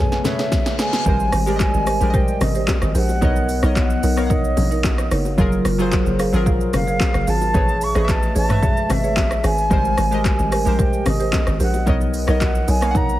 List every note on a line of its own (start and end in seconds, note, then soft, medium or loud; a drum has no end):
0.00 1.04 C#3 medium
0.00 0.24 A3 medium
0.00 1.04 A3 medium
0.00 1.04 B3 medium
0.00 0.10 G#4 medium
0.00 0.25 G#4 medium
0.00 1.02 G#4 medium
0.00 0.10 A4 medium
0.00 0.11 B4 medium
0.00 0.26 B4 medium
0.00 0.11 C#5 medium
0.00 0.27 C#5 medium
0.00 0.25 G#5 medium
0.00 reverse cymbal medium
0.12 snare medium
0.12 shaker soft
0.24 0.90 A3 medium
0.24 0.90 G#4 medium
0.24 0.91 B4 medium
0.24 0.91 C#5 medium
0.24 0.76 E5 loud
0.24 snare medium
0.24 low bongo medium
0.24 low conga medium
0.24 shaker medium
0.39 0.51 G#4 medium
0.39 0.51 A4 medium
0.39 0.51 B4 medium
0.39 0.51 C#5 medium
0.39 snare medium
0.39 shaker medium
0.52 kick medium
0.52 snare medium
0.52 high bongo medium
0.52 low bongo medium
0.52 shaker medium
0.66 snare medium
0.66 shaker medium
0.79 0.91 G#4 medium
0.79 0.92 A4 medium
0.79 0.92 B4 medium
0.79 0.92 C#5 medium
0.79 1.57 G#5 loud
0.79 snare loud
0.79 shaker medium
0.93 snare medium
0.93 high bongo medium
0.93 shaker medium
1.05 1.32 G#1 loud
1.05 1.39 G3 medium
1.05 1.38 G#3 medium
1.05 1.19 G4 medium
1.05 1.19 A#4 medium
1.05 1.39 A#4 medium
1.05 1.19 C5 loud
1.05 1.40 C5 medium
1.05 kick loud
1.05 low conga medium
1.05 shaker medium
1.20 shaker medium
1.32 1.72 G#1 loud
1.32 cross-stick loud
1.32 open hi-hat medium
1.32 shaker medium
1.46 1.89 G#3 medium
1.46 1.59 G4 medium
1.46 1.90 G4 medium
1.46 1.59 A#4 medium
1.46 1.91 A#4 medium
1.46 1.59 C5 medium
1.46 1.55 D5 medium
1.46 shaker medium
1.56 1.94 D#5 medium
1.56 kick loud
1.60 2.16 G#5 loud
1.60 clap medium
1.60 high bongo medium
1.60 shaker medium
1.74 2.00 G#1 medium
1.74 shaker medium
1.87 2.00 G4 medium
1.87 2.00 A#4 medium
1.87 2.00 C5 medium
1.87 cross-stick loud
1.87 open hi-hat medium
1.87 shaker loud
2.00 2.27 A#1 medium
2.00 2.87 G#3 medium
2.00 2.87 G4 medium
2.00 2.88 A#4 medium
2.00 2.08 D5 medium
2.00 shaker medium
2.10 2.92 D#5 medium
2.10 kick loud
2.10 low conga medium
2.10 shaker medium
2.14 2.27 G4 medium
2.14 2.27 A#4 medium
2.14 2.27 C5 loud
2.14 2.44 G5 loud
2.28 shaker medium
2.41 2.67 G#1 loud
2.41 2.98 D#5 loud
2.41 cross-stick loud
2.41 open hi-hat medium
2.41 low bongo medium
2.41 low conga medium
2.41 shaker medium
2.55 2.67 G4 medium
2.55 2.67 A#4 medium
2.55 2.67 C5 medium
2.55 shaker medium
2.68 kick medium
2.68 clap loud
2.68 high bongo medium
2.68 low bongo medium
2.68 shaker medium
2.82 2.94 G#1 loud
2.82 cross-stick loud
2.82 shaker medium
2.95 3.21 A#1 loud
2.95 3.08 G4 medium
2.95 3.08 A#4 medium
2.95 3.08 C5 medium
2.95 3.77 F#5 loud
2.95 open hi-hat medium
2.95 shaker medium
3.09 high bongo medium
3.09 shaker medium
3.21 3.62 B1 loud
3.21 3.54 B3 medium
3.21 3.35 D#4 medium
3.21 3.55 A#4 medium
3.21 3.35 A#4 medium
3.21 3.35 C#5 loud
3.21 3.55 C#5 medium
3.21 3.56 D#5 medium
3.21 kick loud
3.21 low conga medium
3.21 shaker medium
3.36 shaker medium
3.49 open hi-hat medium
3.49 shaker medium
3.62 4.02 B1 loud
3.62 4.06 B3 medium
3.62 3.75 D#4 medium
3.62 3.75 A#4 medium
3.62 4.06 A#4 medium
3.62 3.75 C#5 medium
3.62 4.07 C#5 medium
3.62 4.07 D#5 medium
3.62 cross-stick medium
3.62 shaker medium
3.76 4.27 F#5 loud
3.76 kick loud
3.76 clap medium
3.76 high bongo medium
3.76 shaker medium
3.90 shaker medium
4.03 4.55 B1 loud
4.03 4.16 D#4 medium
4.03 4.16 A#4 medium
4.03 4.16 C#5 medium
4.03 open hi-hat medium
4.03 shaker loud
4.17 5.03 B3 medium
4.17 5.04 A#4 medium
4.17 5.04 C#5 medium
4.17 4.25 F5 medium
4.17 cross-stick medium
4.17 shaker medium
4.26 4.43 D#4 medium
4.26 4.43 A#4 medium
4.26 5.08 F#5 medium
4.26 kick loud
4.26 low conga medium
4.26 shaker medium
4.30 4.43 C#5 loud
4.30 5.08 D#5 medium
4.44 shaker medium
4.57 5.09 A#1 loud
4.57 open hi-hat medium
4.57 low bongo medium
4.57 low conga medium
4.57 shaker medium
4.71 4.83 D#4 medium
4.71 4.83 A#4 medium
4.71 4.83 C#5 medium
4.71 shaker medium
4.84 kick loud
4.84 clap loud
4.84 high bongo medium
4.84 low bongo medium
4.84 shaker medium
4.98 cross-stick loud
4.98 shaker medium
5.11 5.37 F#1 medium
5.11 5.24 D#4 medium
5.11 5.24 A#4 medium
5.11 5.24 C#5 medium
5.11 cross-stick loud
5.11 open hi-hat medium
5.11 shaker medium
5.25 high bongo medium
5.25 shaker medium
5.38 5.64 F#1 loud
5.38 5.71 F#3 medium
5.38 5.71 F4 medium
5.38 5.51 G#4 medium
5.38 5.72 G#4 medium
5.38 5.51 A#4 medium
5.38 5.72 A#4 loud
5.38 5.51 F5 loud
5.38 kick loud
5.38 low conga medium
5.38 shaker medium
5.52 shaker medium
5.65 6.05 F#1 loud
5.65 cross-stick loud
5.65 open hi-hat medium
5.65 shaker medium
5.78 6.22 F#3 medium
5.78 6.22 F4 medium
5.78 5.91 G#4 medium
5.78 6.23 G#4 medium
5.78 5.91 A#4 medium
5.78 6.23 C5 loud
5.78 5.91 F5 medium
5.78 shaker medium
5.92 kick loud
5.92 clap medium
5.92 high bongo medium
5.92 shaker medium
6.06 6.32 F#1 loud
6.06 shaker medium
6.19 6.32 G#4 medium
6.19 6.32 A#4 medium
6.19 6.32 F5 medium
6.19 cross-stick medium
6.19 open hi-hat medium
6.19 shaker loud
6.33 6.59 G#1 loud
6.33 7.19 F#3 medium
6.33 7.20 F4 medium
6.33 7.20 G#4 medium
6.33 7.21 A#4 loud
6.33 shaker medium
6.46 6.59 G#4 medium
6.46 6.59 A#4 medium
6.46 6.59 F5 loud
6.46 kick loud
6.46 low conga medium
6.46 shaker medium
6.61 shaker soft
6.73 6.99 F#1 medium
6.73 7.31 F5 loud
6.73 cross-stick loud
6.73 open hi-hat medium
6.73 low bongo medium
6.73 low conga medium
6.73 shaker medium
6.87 6.99 G#4 medium
6.87 6.99 A#4 medium
6.87 6.99 F5 medium
6.87 shaker medium
7.00 kick loud
7.00 clap loud
7.00 high bongo medium
7.00 low bongo medium
7.00 shaker medium
7.14 7.27 F#1 loud
7.14 cross-stick loud
7.14 shaker medium
7.27 7.53 G#1 loud
7.27 7.40 G#4 medium
7.27 7.40 A#4 medium
7.27 7.40 F5 medium
7.27 7.85 A5 loud
7.27 open hi-hat medium
7.27 shaker medium
7.41 high bongo medium
7.41 shaker medium
7.54 7.94 A1 loud
7.54 7.87 A3 medium
7.54 7.67 G#4 medium
7.54 7.87 G#4 medium
7.54 7.67 B4 medium
7.54 7.88 B4 medium
7.54 7.67 C#5 loud
7.54 7.88 C#5 medium
7.54 kick loud
7.54 low conga medium
7.54 shaker medium
7.68 shaker medium
7.81 8.12 C#6 loud
7.81 open hi-hat medium
7.81 shaker medium
7.95 8.34 A1 loud
7.95 8.38 A3 medium
7.95 8.07 G#4 medium
7.95 8.39 G#4 medium
7.95 8.07 B4 medium
7.95 8.39 B4 medium
7.95 8.08 C#5 medium
7.95 8.03 D#5 medium
7.95 cross-stick loud
7.95 shaker medium
8.05 8.43 E5 medium
8.09 8.36 A5 loud
8.09 kick loud
8.09 clap medium
8.09 high bongo medium
8.09 shaker medium
8.23 shaker medium
8.35 8.88 A1 loud
8.35 8.48 G#4 medium
8.35 8.48 B4 medium
8.35 8.48 C#5 medium
8.35 8.93 A5 loud
8.35 open hi-hat medium
8.35 shaker loud
8.49 9.36 G#3 medium
8.49 9.35 A3 medium
8.49 9.37 B4 medium
8.49 9.37 E5 medium
8.49 cross-stick medium
8.49 mid tom loud
8.49 shaker medium
8.63 8.75 G#4 medium
8.63 8.75 B4 medium
8.63 8.76 C#5 loud
8.63 kick loud
8.63 high bongo soft
8.63 low conga medium
8.63 shaker medium
8.77 shaker soft
8.90 9.42 G#1 medium
8.90 9.47 E5 loud
8.90 cross-stick loud
8.90 open hi-hat medium
8.90 low bongo medium
8.90 low conga medium
8.90 shaker medium
9.04 9.15 G#4 medium
9.04 9.16 B4 medium
9.04 9.16 C#5 medium
9.04 shaker medium
9.17 kick medium
9.17 clap loud
9.17 high bongo medium
9.17 low bongo medium
9.17 shaker medium
9.31 cross-stick loud
9.31 shaker medium
9.44 9.70 G#1 medium
9.44 9.56 G#4 medium
9.44 9.57 B4 medium
9.44 9.57 C#5 medium
9.44 10.26 G#5 loud
9.44 cross-stick loud
9.44 open hi-hat medium
9.44 shaker medium
9.58 shaker medium
9.70 9.97 G#1 loud
9.70 10.04 G3 medium
9.70 10.03 G#3 medium
9.70 9.83 G4 medium
9.70 9.83 A#4 medium
9.70 10.04 A#4 medium
9.70 9.84 C5 loud
9.70 10.05 C5 medium
9.70 kick loud
9.70 low conga medium
9.70 shaker medium
9.85 shaker medium
9.98 10.37 G#1 loud
9.98 cross-stick loud
9.98 open hi-hat medium
9.98 shaker medium
10.11 10.54 G#3 medium
10.11 10.24 G4 medium
10.11 10.55 G4 medium
10.11 10.24 A#4 medium
10.11 10.55 A#4 medium
10.11 10.24 C5 medium
10.11 10.56 D#5 medium
10.11 shaker medium
10.25 10.76 G#5 loud
10.25 kick loud
10.25 clap medium
10.25 high bongo medium
10.25 shaker medium
10.39 10.65 G#1 medium
10.39 shaker medium
10.52 10.65 G4 medium
10.52 10.65 A#4 medium
10.52 10.65 C5 medium
10.52 cross-stick loud
10.52 open hi-hat medium
10.52 shaker loud
10.65 10.92 A#1 medium
10.65 11.52 G#3 medium
10.65 11.52 G4 medium
10.65 11.53 A#4 medium
10.65 11.53 C5 medium
10.65 shaker medium
10.79 10.92 G4 medium
10.79 10.92 A#4 medium
10.79 10.92 C5 loud
10.79 11.05 G5 loud
10.79 kick loud
10.79 low conga medium
10.79 shaker medium
10.93 shaker medium
11.06 11.32 G#1 loud
11.06 11.57 D#5 loud
11.06 cross-stick loud
11.06 open hi-hat medium
11.06 low bongo medium
11.06 low conga medium
11.06 shaker medium
11.20 11.32 G4 medium
11.20 11.32 A#4 medium
11.20 11.32 C5 medium
11.20 shaker medium
11.33 kick medium
11.33 clap loud
11.33 high bongo medium
11.33 low bongo medium
11.33 shaker medium
11.47 11.60 G#1 medium
11.47 cross-stick loud
11.47 shaker medium
11.60 11.86 A#1 loud
11.60 11.73 G4 medium
11.60 11.73 A#4 medium
11.60 11.73 C5 medium
11.60 12.11 F#5 medium
11.60 open hi-hat medium
11.60 shaker medium
11.74 high bongo medium
11.74 shaker medium
11.86 12.27 B1 loud
11.86 12.19 B3 medium
11.86 12.00 D#4 medium
11.86 12.00 A#4 medium
11.86 12.20 A#4 medium
11.86 12.00 C#5 loud
11.86 12.20 C#5 medium
11.86 12.21 D#5 medium
11.86 kick loud
11.86 low conga medium
11.86 shaker medium
12.01 shaker medium
12.14 open hi-hat medium
12.14 shaker medium
12.27 12.67 B1 loud
12.27 12.70 B3 medium
12.27 12.40 D#4 medium
12.27 12.40 A#4 medium
12.27 12.71 A#4 medium
12.27 12.40 C#5 medium
12.27 12.72 C#5 medium
12.27 12.72 D#5 medium
12.27 cross-stick loud
12.27 shaker medium
12.41 12.71 F#5 loud
12.41 kick loud
12.41 clap medium
12.41 high bongo medium
12.41 shaker medium
12.55 shaker medium
12.68 13.20 B1 loud
12.68 12.81 D#4 medium
12.68 12.81 A#4 medium
12.68 12.81 C#5 medium
12.68 12.98 G#5 loud
12.68 open hi-hat medium
12.68 shaker loud
12.81 13.20 A#3 medium
12.81 13.20 B3 medium
12.81 13.20 C#5 medium
12.81 12.89 F5 medium
12.81 cross-stick medium
12.81 shaker medium
12.91 13.20 F#5 medium
12.91 kick loud
12.91 low conga medium
12.95 13.08 D#4 medium
12.95 13.08 A#4 medium
12.95 13.08 C#5 loud
12.95 13.20 A#5 loud
12.95 shaker medium
13.09 shaker medium